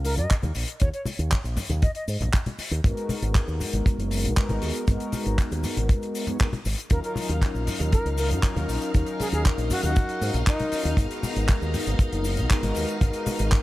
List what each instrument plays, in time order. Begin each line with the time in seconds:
Already playing: fingered electric bass C#2
0.05 flute A#4, open hi-hat, high bongo, cabasa
0.17 fingered electric bass F#2, flute D#5, closed hi-hat, cabasa
0.30 kick, clap, closed hi-hat, cabasa
0.42 fingered electric bass D#2, closed hi-hat, high bongo, high conga
0.55 fingered electric bass A#1, open hi-hat, cabasa
0.68 closed hi-hat, cabasa
0.80 fingered electric bass D#2, flute C#5, kick, closed hi-hat, cabasa
0.94 flute C#5, closed hi-hat, cabasa
1.05 open hi-hat, high conga, cabasa
1.19 fingered electric bass D#2, closed hi-hat, cabasa
1.32 kick, clap, closed hi-hat, cabasa
1.44 fingered electric bass A#1, closed hi-hat, cabasa
1.57 muted fingered electric bass stroke, open hi-hat, low conga, cabasa
1.69 fingered electric bass D#2, closed hi-hat, high bongo, high conga, cabasa
1.82 flute D#5, kick, closed hi-hat, cabasa
1.95 flute D#5, closed hi-hat
2.08 fingered electric bass G#2, open hi-hat, cabasa
2.20 fingered electric bass A#1, closed hi-hat, low conga, cabasa
2.33 kick, clap, closed hi-hat, cabasa
2.46 closed hi-hat, high conga
2.58 muted fingered electric bass stroke, open hi-hat, high bongo, cabasa
2.71 fingered electric bass D#2, closed hi-hat, cabasa
2.83 fingered electric bass G#1, analog polysynth G#3 B3 D#4 F#4 A#4, kick, closed hi-hat, cabasa
2.97 closed hi-hat, cabasa
3.09 open hi-hat, high conga, cabasa
3.22 fingered electric bass G#1, closed hi-hat, cabasa
3.35 kick, clap, closed hi-hat, cabasa
3.48 fingered electric bass D#2, cabasa
3.60 muted fingered electric bass stroke, open hi-hat, low conga, cabasa
3.73 fingered electric bass G#1, closed hi-hat, high bongo, high conga, cabasa
3.86 kick, closed hi-hat, cabasa
3.98 fingered electric bass F#1, closed hi-hat
4.11 open hi-hat, high bongo, cabasa
4.24 fingered electric bass B1, closed hi-hat, cabasa
4.36 analog polysynth G#3 B3 D#4 F#4 A#4, kick, clap, closed hi-hat, cabasa
4.49 fingered electric bass G#1, closed hi-hat, high bongo, high conga
4.62 fingered electric bass D#2, open hi-hat, cabasa
4.75 closed hi-hat, cabasa
4.87 fingered electric bass G#1, analog polysynth G#3 B3 D#4 F#4 A#4, kick, closed hi-hat, cabasa
5.00 closed hi-hat, cabasa
5.12 open hi-hat, high conga, cabasa
5.26 fingered electric bass G#1, closed hi-hat, cabasa
5.38 kick, clap, closed hi-hat, cabasa
5.51 fingered electric bass D#2, closed hi-hat, cabasa
5.64 muted fingered electric bass stroke, open hi-hat, low conga, cabasa
5.77 fingered electric bass G#1, closed hi-hat, high bongo, high conga, cabasa
5.89 kick, closed hi-hat, cabasa
6.02 closed hi-hat, cabasa
6.15 open hi-hat, cabasa
6.27 analog polysynth G#3 B3 D#4 F#4 C#5, closed hi-hat, low conga, cabasa
6.39 analog polysynth G#3 B3 D#4 F#4 A#4, kick, clap, closed hi-hat, cabasa
6.53 closed hi-hat, high conga
6.65 fingered electric bass G#1, open hi-hat, high bongo, cabasa
6.78 closed hi-hat, cabasa
6.90 fingered electric bass D#2, analog polysynth F#3 C#4 D#4 F4 A#4, string machine D#4 F5, flute A#4, kick, closed hi-hat, cabasa
7.04 flute A#4, closed hi-hat, cabasa
7.16 open hi-hat, high conga, cabasa
7.29 fingered electric bass D#2, closed hi-hat, cabasa
7.42 kick, clap, closed hi-hat, cabasa
7.54 fingered electric bass A#1, cabasa
7.67 muted fingered electric bass stroke, open hi-hat, low conga, cabasa
7.80 fingered electric bass D#2, closed hi-hat, high bongo, high conga, cabasa
7.92 flute A#4, kick, closed hi-hat, cabasa
8.05 fingered electric bass C#2, closed hi-hat
8.18 flute A#4, open hi-hat, high bongo, cabasa
8.31 fingered electric bass F#2, closed hi-hat, cabasa
8.43 analog polysynth F#3 C#4 D#4 F4 A#4, kick, clap, closed hi-hat, cabasa
8.56 fingered electric bass D#2, closed hi-hat, high bongo, high conga
8.68 fingered electric bass A#1, open hi-hat, cabasa
8.82 closed hi-hat, cabasa
8.94 fingered electric bass D#2, analog polysynth F#3 C#4 D#4 A#4 F5, kick, closed hi-hat, cabasa
9.06 closed hi-hat, cabasa
9.20 flute G#4, open hi-hat, high conga, cabasa
9.32 fingered electric bass D#2, flute G#4, closed hi-hat, cabasa
9.45 kick, clap, closed hi-hat, cabasa
9.58 fingered electric bass A#1, closed hi-hat, cabasa
9.70 flute F#4, muted fingered electric bass stroke, open hi-hat, low conga, cabasa
9.83 fingered electric bass D#2, flute F#4, closed hi-hat, high bongo, high conga, cabasa
9.96 kick, closed hi-hat, cabasa
10.09 closed hi-hat
10.21 fingered electric bass G#2, open hi-hat, cabasa
10.34 fingered electric bass A#1, closed hi-hat, low conga, cabasa
10.47 analog polysynth F#3 C#4 D#4 F4 A#4, flute D#4, kick, clap, closed hi-hat, cabasa
10.60 closed hi-hat, high conga
10.72 muted fingered electric bass stroke, open hi-hat, high bongo, cabasa
10.85 fingered electric bass D#2, closed hi-hat, cabasa
10.97 fingered electric bass G#1, analog polysynth G#3 B3 D#4 F#4 A#4, kick, closed hi-hat, cabasa
11.10 closed hi-hat, cabasa
11.23 open hi-hat, high conga, cabasa
11.36 fingered electric bass G#1, closed hi-hat, cabasa
11.49 kick, clap, closed hi-hat, cabasa
11.62 fingered electric bass D#2, cabasa
11.74 muted fingered electric bass stroke, open hi-hat, low conga, cabasa
11.87 fingered electric bass G#1, closed hi-hat, high bongo, high conga, cabasa
11.99 kick, closed hi-hat, cabasa
12.12 fingered electric bass F#1, closed hi-hat
12.24 open hi-hat, high bongo, cabasa
12.37 fingered electric bass B1, closed hi-hat, cabasa
12.50 analog polysynth G#3 B3 D#4 F#4 A#4, kick, clap, closed hi-hat, cabasa
12.63 fingered electric bass G#1, closed hi-hat, high bongo, high conga
12.75 fingered electric bass D#2, open hi-hat, cabasa
12.89 closed hi-hat, cabasa
13.01 fingered electric bass G#1, analog polysynth G#3 B3 D#4 F#4 A#4, kick, closed hi-hat, cabasa
13.13 closed hi-hat, cabasa
13.26 open hi-hat, high conga, cabasa
13.39 fingered electric bass G#1, closed hi-hat, cabasa
13.51 kick, clap, closed hi-hat, cabasa